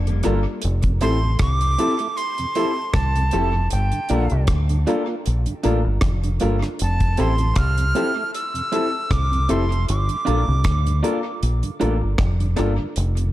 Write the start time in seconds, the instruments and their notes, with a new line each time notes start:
Already playing: fingered electric bass F1
0.07 tonewheel organ G2 D3, clean electric guitar G3 A#3, closed hi-hat
0.23 fingered electric bass G1, tonewheel organ G3 A#3 F4, grand piano A#3 D4 F4 A4, clean electric guitar D4 F4 A#4, cross-stick, closed hi-hat
0.62 fingered electric bass F1, closed hi-hat
0.82 tonewheel organ F2 C3, kick, closed hi-hat
1.01 fingered electric bass A1, tonewheel organ F3 A3 E4, clean electric guitar C4 E4 A4, grand piano C4 E4 G4 A4, flute C6, closed hi-hat
1.23 tonewheel organ F2 C3
1.39 fingered electric bass C2, flute D6, kick, cross-stick, closed hi-hat
1.61 tonewheel organ F2 C3, closed hi-hat
1.78 tonewheel organ F3 A3 E4, clean electric guitar C4 E4 A4, grand piano C4 E4 G4 A4, closed hi-hat
1.99 tonewheel organ A3 E4, closed hi-hat
2.17 flute C6, closed hi-hat
2.38 tonewheel organ F2 C3, closed hi-hat
2.55 tonewheel organ F3 A3 E4, grand piano C4 E4 G4 A4, clean electric guitar C4 E4 A4, closed hi-hat
2.94 fingered electric bass C2, flute A5, kick, cross-stick, closed hi-hat
3.16 tonewheel organ F2 C3, closed hi-hat
3.31 fingered electric bass F1, tonewheel organ F3 A3 E4, clean electric guitar C4 E4 A4, grand piano C4 E4 G4 A4, closed hi-hat
3.54 tonewheel organ F2 C3
3.70 fingered electric bass G1, flute G5, closed hi-hat
3.92 tonewheel organ G2 D3, closed hi-hat
4.09 fingered electric bass A#1, tonewheel organ G3 A#3 F4, grand piano A#3 D4 F4 A4, clean electric guitar D4 F4 A#4, closed hi-hat
4.30 fingered electric bass C2, tonewheel organ G2 D3, closed hi-hat
4.47 fingered electric bass D2, kick, cross-stick, closed hi-hat
4.69 tonewheel organ G2 D3, closed hi-hat
4.86 tonewheel organ G3 A#3 F4, grand piano A#3 D4 F4 A4, clean electric guitar D4 F4 A#4, closed hi-hat
5.08 tonewheel organ A#3 F4
5.26 fingered electric bass A#1, closed hi-hat
5.46 tonewheel organ G2 D3, closed hi-hat
5.63 fingered electric bass A1, tonewheel organ G3 A#3 F4, grand piano A#3 D4 F4 A4, clean electric guitar D4 F4 A#4, closed hi-hat
5.85 fingered electric bass G1, muted clean electric guitar stroke
6.01 fingered electric bass F1, kick, cross-stick, closed hi-hat
6.23 tonewheel organ G2 D3, closed hi-hat
6.40 fingered electric bass G1, tonewheel organ G3 A#3 F4, grand piano A#3 D4 F4 A4, clean electric guitar D4 F4 A#4, closed hi-hat
6.62 tonewheel organ G2 D3, cross-stick, closed hi-hat
6.79 fingered electric bass F1, flute A5, closed hi-hat
7.00 tonewheel organ F2 C3, kick, closed hi-hat
7.17 fingered electric bass A1, tonewheel organ F3 A3 E4, clean electric guitar C4 E4 A4, grand piano C4 E4 G4 A4, flute C6, closed hi-hat
7.38 tonewheel organ F2 C3, closed hi-hat
7.56 fingered electric bass C2, flute F6, kick, cross-stick, closed hi-hat
7.78 tonewheel organ F2 C3, closed hi-hat
7.95 tonewheel organ F3 A3 E4, grand piano C4 E4 G4 A4, clean electric guitar C4 E4 A4, closed hi-hat
8.16 tonewheel organ A3 E4
8.34 flute E6, closed hi-hat
8.54 tonewheel organ F2 C3, closed hi-hat
8.72 tonewheel organ F3 A3 E4, clean electric guitar C4 E4 A4, grand piano C4 E4 G4 A4, closed hi-hat
9.11 fingered electric bass C2, flute D6, kick, cross-stick, closed hi-hat
9.32 tonewheel organ F2 C3, closed hi-hat
9.49 fingered electric bass F1, tonewheel organ F3 A3 E4, clean electric guitar C4 E4 A4, grand piano C4 E4 G4 A4, flute C6, closed hi-hat
9.70 tonewheel organ F2 C3, closed hi-hat
9.89 fingered electric bass G1, flute D6, closed hi-hat
10.09 tonewheel organ G2 D3, closed hi-hat
10.25 fingered electric bass A#1, tonewheel organ G3 A#3 F4, grand piano A#3 D4 F4 A4, clean electric guitar D4 F4 A#4, closed hi-hat
10.48 fingered electric bass C2, tonewheel organ G2 D3
10.64 fingered electric bass D2, kick, cross-stick, closed hi-hat
10.85 tonewheel organ G2 D3, closed hi-hat
11.03 tonewheel organ G3 A#3 F4, grand piano A#3 D4 F4 A4, clean electric guitar D4 F4 A#4, closed hi-hat
11.24 tonewheel organ A#3 F4
11.43 fingered electric bass A#1, closed hi-hat
11.63 tonewheel organ G2 D3, closed hi-hat
11.80 fingered electric bass A1, tonewheel organ G3 A#3 F4, grand piano A#3 D4 F4 A4, clean electric guitar D4 F4 A#4, closed hi-hat
12.01 fingered electric bass G1, muted clean electric guitar stroke
12.18 fingered electric bass F1, kick, cross-stick, closed hi-hat
12.40 tonewheel organ G2 D3, closed hi-hat
12.56 fingered electric bass G1, tonewheel organ G3 A#3 F4, grand piano A#3 D4 F4 A4, clean electric guitar D4 F4 A#4, cross-stick, closed hi-hat
12.79 tonewheel organ G2 D3
12.96 fingered electric bass F1, closed hi-hat
13.17 tonewheel organ F2 C3, closed hi-hat